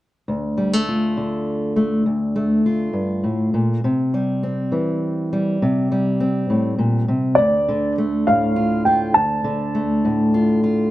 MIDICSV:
0, 0, Header, 1, 3, 480
1, 0, Start_track
1, 0, Key_signature, -1, "minor"
1, 0, Tempo, 591716
1, 224, Time_signature, 6, 3, 24, 8
1, 8847, End_track
2, 0, Start_track
2, 0, Title_t, "Upright piano"
2, 0, Program_c, 0, 0
2, 5964, Note_on_c, 0, 74, 77
2, 6422, Note_off_c, 0, 74, 0
2, 6709, Note_on_c, 0, 77, 72
2, 7181, Note_on_c, 0, 79, 61
2, 7201, Note_off_c, 0, 77, 0
2, 7417, Note_on_c, 0, 81, 77
2, 7430, Note_off_c, 0, 79, 0
2, 8587, Note_off_c, 0, 81, 0
2, 8847, End_track
3, 0, Start_track
3, 0, Title_t, "Steel-string acoustic guitar"
3, 0, Program_c, 1, 25
3, 227, Note_on_c, 1, 38, 48
3, 467, Note_on_c, 1, 55, 36
3, 595, Note_off_c, 1, 55, 0
3, 595, Note_on_c, 1, 57, 27
3, 719, Note_on_c, 1, 65, 38
3, 950, Note_on_c, 1, 50, 42
3, 1420, Note_off_c, 1, 57, 0
3, 1430, Note_on_c, 1, 57, 36
3, 1639, Note_off_c, 1, 57, 0
3, 1644, Note_off_c, 1, 65, 0
3, 1660, Note_off_c, 1, 38, 0
3, 1670, Note_on_c, 1, 38, 48
3, 1912, Note_on_c, 1, 57, 40
3, 2156, Note_on_c, 1, 65, 42
3, 2375, Note_off_c, 1, 38, 0
3, 2378, Note_on_c, 1, 43, 42
3, 2623, Note_off_c, 1, 43, 0
3, 2625, Note_on_c, 1, 45, 39
3, 2866, Note_off_c, 1, 45, 0
3, 2871, Note_on_c, 1, 46, 44
3, 3081, Note_off_c, 1, 57, 0
3, 3083, Note_off_c, 1, 65, 0
3, 3109, Note_off_c, 1, 46, 0
3, 3109, Note_off_c, 1, 50, 0
3, 3117, Note_on_c, 1, 48, 54
3, 3357, Note_on_c, 1, 55, 41
3, 3596, Note_on_c, 1, 60, 39
3, 3827, Note_on_c, 1, 52, 44
3, 3832, Note_off_c, 1, 48, 0
3, 4313, Note_off_c, 1, 55, 0
3, 4321, Note_on_c, 1, 55, 42
3, 4519, Note_off_c, 1, 52, 0
3, 4523, Note_off_c, 1, 60, 0
3, 4561, Note_on_c, 1, 48, 55
3, 4790, Note_off_c, 1, 55, 0
3, 4799, Note_on_c, 1, 55, 43
3, 5032, Note_on_c, 1, 60, 38
3, 5268, Note_off_c, 1, 48, 0
3, 5272, Note_on_c, 1, 45, 45
3, 5501, Note_off_c, 1, 45, 0
3, 5504, Note_on_c, 1, 46, 49
3, 5743, Note_off_c, 1, 46, 0
3, 5746, Note_on_c, 1, 48, 45
3, 5961, Note_off_c, 1, 60, 0
3, 5986, Note_off_c, 1, 48, 0
3, 5987, Note_on_c, 1, 38, 57
3, 5993, Note_off_c, 1, 55, 0
3, 6234, Note_on_c, 1, 50, 44
3, 6474, Note_on_c, 1, 57, 43
3, 6710, Note_on_c, 1, 45, 47
3, 6945, Note_on_c, 1, 65, 46
3, 7179, Note_off_c, 1, 65, 0
3, 7189, Note_on_c, 1, 65, 51
3, 7398, Note_off_c, 1, 65, 0
3, 7400, Note_off_c, 1, 57, 0
3, 7416, Note_off_c, 1, 38, 0
3, 7426, Note_on_c, 1, 38, 60
3, 7427, Note_off_c, 1, 45, 0
3, 7651, Note_off_c, 1, 50, 0
3, 7660, Note_on_c, 1, 50, 52
3, 7907, Note_on_c, 1, 57, 43
3, 8150, Note_on_c, 1, 45, 49
3, 8389, Note_on_c, 1, 65, 51
3, 8618, Note_off_c, 1, 65, 0
3, 8628, Note_on_c, 1, 65, 50
3, 8835, Note_off_c, 1, 57, 0
3, 8837, Note_off_c, 1, 65, 0
3, 8847, Note_off_c, 1, 38, 0
3, 8847, Note_off_c, 1, 45, 0
3, 8847, Note_off_c, 1, 50, 0
3, 8847, End_track
0, 0, End_of_file